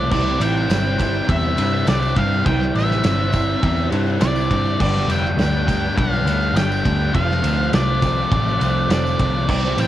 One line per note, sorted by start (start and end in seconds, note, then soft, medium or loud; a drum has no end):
0.00 0.12 C4 medium
0.00 0.10 F4 medium
0.00 0.11 D5 loud
0.09 0.37 C2 loud
0.09 0.38 C3 loud
0.09 2.44 C3 loud
0.09 0.68 E3 loud
0.09 0.39 G3 loud
0.09 0.42 G3 loud
0.09 0.40 C4 loud
0.09 0.41 C4 loud
0.09 0.42 D5 loud
0.09 kick loud
0.09 crash loud
0.09 tambourine soft
0.13 0.39 E4 loud
0.26 tambourine soft
0.39 0.66 A1 medium
0.39 0.68 C3 medium
0.39 0.69 G3 loud
0.39 0.69 G3 medium
0.39 0.69 C4 loud
0.39 0.70 C4 medium
0.39 0.70 E4 medium
0.39 1.31 G5 loud
0.39 ride medium
0.39 tambourine medium
0.68 1.20 G1 loud
0.68 0.97 C3 medium
0.68 1.85 E3 medium
0.68 1.01 G3 medium
0.68 0.98 G3 loud
0.68 0.99 C4 loud
0.68 1.00 C4 medium
0.68 0.98 E4 medium
0.68 snare loud
0.68 ride loud
0.68 tambourine loud
0.84 tambourine soft
0.98 1.25 C3 loud
0.98 1.27 G3 medium
0.98 1.59 G3 medium
0.98 1.27 C4 medium
0.98 1.57 C4 medium
0.98 1.56 E4 medium
0.98 kick medium
0.98 ride medium
0.98 tambourine medium
1.13 tambourine soft
1.27 1.54 E2 medium
1.27 1.55 C3 loud
1.27 1.57 G3 loud
1.27 1.56 C4 loud
1.27 1.88 E5 loud
1.27 kick loud
1.27 ride loud
1.42 tambourine soft
1.57 1.83 G2 loud
1.57 1.86 C3 loud
1.57 1.88 G3 loud
1.57 1.87 G3 medium
1.57 1.88 C4 loud
1.57 1.86 C4 medium
1.57 1.87 E4 medium
1.57 ride medium
1.57 tambourine medium
1.72 tambourine soft
1.86 2.13 C2 medium
1.86 2.15 C3 loud
1.86 2.44 E3 medium
1.86 2.46 G3 medium
1.86 2.17 G3 loud
1.86 2.45 C4 medium
1.86 2.16 C4 loud
1.86 2.46 E4 medium
1.86 2.18 D5 medium
1.86 snare loud
1.86 ride loud
1.86 tambourine medium
2.02 tambourine medium
2.16 2.42 G2 medium
2.16 2.43 C3 medium
2.16 2.45 G3 loud
2.16 2.44 C4 medium
2.16 2.46 F5 medium
2.16 kick medium
2.16 ride medium
2.44 2.71 C2 medium
2.44 2.72 C3 loud
2.44 3.03 C3 medium
2.44 3.02 E3 loud
2.44 2.73 G3 loud
2.44 2.76 G3 loud
2.44 2.73 C4 loud
2.44 2.75 C4 loud
2.44 2.73 E4 loud
2.44 2.73 G5 loud
2.44 kick loud
2.44 ride loud
2.44 tambourine soft
2.62 snare soft
2.73 3.00 A1 medium
2.73 3.02 C3 medium
2.73 3.03 G3 medium
2.73 3.04 G3 medium
2.73 3.02 C4 loud
2.73 3.04 C4 medium
2.73 3.05 E4 medium
2.73 3.88 E5 medium
2.73 ride medium
2.73 tambourine medium
2.89 snare soft
2.89 tambourine soft
3.03 3.55 G1 medium
3.03 3.30 C3 loud
3.03 3.62 E3 medium
3.03 3.32 G3 medium
3.03 3.35 G3 medium
3.03 3.31 C4 loud
3.03 3.33 C4 medium
3.03 3.31 E4 medium
3.03 snare loud
3.03 ride loud
3.03 tambourine loud
3.31 3.60 C3 medium
3.31 3.61 G3 medium
3.31 3.61 C4 loud
3.31 3.91 C4 medium
3.31 3.91 E4 medium
3.31 kick medium
3.31 ride medium
3.31 tambourine medium
3.35 3.93 G3 medium
3.61 3.88 E2 loud
3.61 3.89 C3 loud
3.61 3.90 G3 loud
3.61 3.91 C4 loud
3.61 kick loud
3.61 ride loud
3.61 tambourine soft
3.77 tambourine soft
3.91 4.17 G2 loud
3.91 4.18 C3 medium
3.91 4.19 G3 loud
3.91 4.20 G3 medium
3.91 4.20 C4 loud
3.91 4.21 C4 medium
3.91 4.21 E4 medium
3.91 ride medium
4.06 tambourine soft
4.20 4.47 C2 loud
4.20 4.48 C3 medium
4.20 4.77 E3 medium
4.20 4.48 G3 loud
4.20 4.78 G3 medium
4.20 4.48 C4 loud
4.20 4.78 C4 medium
4.20 4.79 E4 medium
4.20 4.80 D5 loud
4.20 snare loud
4.20 ride loud
4.20 tambourine loud
4.36 tambourine medium
4.49 4.76 G2 medium
4.49 4.77 C3 medium
4.49 4.77 G3 medium
4.49 4.77 C4 loud
4.49 kick medium
4.49 ride medium
4.65 tambourine soft
4.78 5.05 G1 medium
4.78 5.37 G2 medium
4.78 5.06 G2 loud
4.78 5.06 D3 loud
4.78 5.38 D3 loud
4.78 5.07 G3 loud
4.78 5.09 G3 loud
4.78 5.08 B3 loud
4.78 5.08 D4 loud
4.78 5.07 G4 loud
4.78 5.11 D5 loud
4.78 kick loud
4.78 tambourine soft
4.78 crash loud
4.95 snare soft
4.95 tambourine soft
5.07 5.34 F1 medium
5.07 5.34 G2 medium
5.07 5.35 D3 medium
5.07 5.36 G3 loud
5.07 5.36 G3 medium
5.07 5.37 B3 medium
5.07 5.38 D4 medium
5.07 5.38 G4 medium
5.07 ride medium
5.07 tambourine medium
5.11 5.97 G5 loud
5.25 snare soft
5.36 5.88 D2 loud
5.36 5.64 G2 medium
5.36 5.65 D3 loud
5.36 5.66 G3 loud
5.36 5.68 G3 medium
5.36 5.68 B3 medium
5.36 5.67 D4 medium
5.36 5.66 G4 medium
5.36 snare loud
5.36 ride loud
5.40 tambourine loud
5.55 tambourine soft
5.65 5.92 G2 medium
5.65 5.94 D3 loud
5.65 5.94 G3 medium
5.65 6.26 B3 medium
5.65 6.26 D4 medium
5.65 6.24 G4 medium
5.65 kick medium
5.65 ride medium
5.69 6.27 G3 medium
5.69 tambourine medium
5.94 6.23 G2 loud
5.94 6.24 D3 loud
5.94 6.25 G3 loud
5.94 kick loud
5.98 6.23 B1 loud
5.98 6.57 F5 loud
5.98 ride loud
6.15 tambourine soft
6.25 6.51 D2 medium
6.25 6.52 G2 medium
6.25 6.53 D3 medium
6.25 6.53 G3 medium
6.25 6.54 B3 medium
6.25 6.56 D4 medium
6.25 6.56 G4 medium
6.25 ride medium
6.29 6.55 D3 medium
6.29 tambourine medium
6.43 tambourine soft
6.53 6.80 G1 loud
6.53 6.81 G2 loud
6.53 6.82 D3 loud
6.53 6.83 G3 loud
6.53 7.12 G3 medium
6.53 7.12 B3 medium
6.53 7.13 D4 medium
6.53 7.14 G5 loud
6.53 ride loud
6.53 tambourine loud
6.57 7.13 G4 medium
6.57 snare loud
6.72 tambourine medium
6.83 7.11 D2 loud
6.83 7.11 G2 loud
6.83 7.12 D3 medium
6.83 7.12 G3 loud
6.83 kick medium
6.83 ride medium
6.88 7.14 D3 medium
7.13 7.40 F1 loud
7.13 7.41 F2 loud
7.13 7.72 F2 loud
7.13 7.41 C3 loud
7.13 7.73 C3 loud
7.13 7.42 F3 loud
7.13 7.44 F3 loud
7.13 7.44 A3 loud
7.13 7.43 C4 loud
7.13 7.42 F4 loud
7.13 7.69 F5 loud
7.13 kick loud
7.13 ride loud
7.13 tambourine soft
7.30 snare soft
7.30 tambourine soft
7.42 7.68 D2 medium
7.42 7.70 F2 medium
7.42 7.70 C3 medium
7.42 7.71 F3 loud
7.42 7.71 F3 medium
7.42 7.72 A3 medium
7.42 7.73 C4 medium
7.42 7.74 F4 medium
7.42 ride medium
7.42 tambourine medium
7.71 8.23 C2 medium
7.71 8.00 F2 loud
7.71 8.00 C3 loud
7.71 8.01 F3 loud
7.71 8.03 F3 medium
7.71 8.02 A3 medium
7.71 8.02 C4 medium
7.71 8.00 F4 medium
7.71 8.91 D5 medium
7.71 snare loud
7.71 ride loud
7.71 tambourine loud
7.89 tambourine soft
8.01 8.29 F2 medium
8.01 8.30 C3 medium
8.01 8.30 F3 loud
8.01 8.60 F3 medium
8.01 8.60 A3 medium
8.01 8.60 C4 medium
8.01 8.58 F4 medium
8.01 kick medium
8.01 ride medium
8.01 tambourine medium
8.18 tambourine soft
8.30 8.57 A1 loud
8.30 8.58 F2 medium
8.30 8.59 C3 loud
8.30 8.59 F3 loud
8.30 kick loud
8.30 ride loud
8.48 tambourine soft
8.59 8.86 C2 medium
8.59 8.88 F2 loud
8.59 8.89 C3 loud
8.59 8.90 F3 loud
8.59 8.88 F3 medium
8.59 8.89 A3 medium
8.59 8.91 C4 medium
8.59 8.91 F4 medium
8.59 ride medium
8.59 tambourine medium
8.78 tambourine soft
8.89 9.15 F1 loud
8.89 9.18 F2 loud
8.89 9.19 C3 medium
8.89 9.47 F3 medium
8.89 9.19 F3 loud
8.89 9.47 A3 medium
8.89 9.49 C4 medium
8.89 9.48 F4 medium
8.89 9.49 D5 loud
8.89 snare loud
8.89 ride loud
8.89 tambourine loud
9.06 tambourine medium
9.19 9.45 C2 loud
9.19 9.47 F2 medium
9.19 9.47 C3 medium
9.19 9.47 F3 medium
9.19 kick medium
9.19 ride medium
9.47 9.74 C2 loud
9.47 9.87 C3 loud
9.47 9.77 C3 loud
9.47 9.87 E3 loud
9.47 9.79 G3 loud
9.47 9.77 G3 loud
9.47 9.78 C4 loud
9.47 9.76 E4 loud
9.47 9.80 D5 loud
9.47 kick loud
9.47 crash loud
9.47 tambourine soft
9.64 snare soft
9.64 tambourine soft
9.77 9.87 A1 medium
9.77 9.87 C3 loud
9.77 9.87 G3 medium
9.77 9.87 C4 medium
9.77 9.87 C4 loud
9.77 9.87 E4 medium
9.77 9.87 G5 loud
9.77 ride medium
9.77 tambourine medium